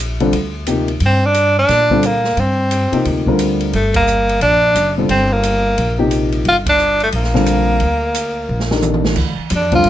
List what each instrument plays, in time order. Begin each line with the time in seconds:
Already playing: upright bass A#1
0.20 grand piano D3 G3 C4 F4 A4, ride
0.33 upright bass D2, ride
0.66 grand piano C3 F3 A#3 D#4 G4, hi-hat pedal, ride
0.88 ride
1.00 upright bass G2, ride
1.06 tenor saxophone C4
1.26 tenor saxophone D4
1.34 hi-hat pedal, ride
1.59 tenor saxophone D4
1.68 upright bass A#2, snare, ride
1.90 grand piano D3 G3 C4 F4 A4, kick
2.03 tenor saxophone A#3, hi-hat pedal, ride
2.24 snare
2.37 upright bass G2, tenor saxophone C4, ride
2.71 hi-hat pedal, ride
2.92 grand piano C3 F3 A#3 D#4 G4, muted upright bass stroke, ride
3.05 upright bass D2, ride
3.27 grand piano D3 G3 C4 F4 A#4, kick
3.39 hi-hat pedal, ride
3.60 ride
3.73 upright bass G1, tenor saxophone A3, ride
3.94 tenor saxophone A#3, kick, ride
4.07 hi-hat pedal
4.29 ride
4.41 upright bass A#1, tenor saxophone D4, ride
4.75 upright bass F#1, hi-hat pedal, ride
4.98 grand piano D3 G3 C4 F4 A4
5.09 upright bass G1, tenor saxophone C4, ride
5.33 tenor saxophone A#3
5.43 hi-hat pedal, ride
5.77 upright bass A#1, ride
5.99 grand piano C3 F3 A#3 D#4 G4
6.11 hi-hat pedal, ride
6.32 ride
6.45 upright bass G1, tenor saxophone F4, ride
6.66 tenor saxophone D4, kick, ride
6.79 hi-hat pedal
7.00 tenor saxophone A3, ride
7.12 upright bass A#1, tenor saxophone A#3, ride
7.24 snare
7.34 grand piano D3 G3 C4 F4 A4, snare
7.46 hi-hat pedal, ride
7.80 upright bass D2, ride
8.14 hi-hat pedal, ride
8.49 upright bass A#1
8.60 snare
8.71 grand piano D#3 D4 G4 A4 A#4, snare
8.82 hi-hat pedal, mid tom
8.94 mid tom
9.05 snare
9.16 upright bass D2, kick, crash
9.38 muted upright bass stroke
9.50 upright bass F2, hi-hat pedal, ride
9.56 tenor saxophone D4
9.72 grand piano D3 G3 C4 F4 A4, tenor saxophone F4, kick, ride
9.84 upright bass G2, ride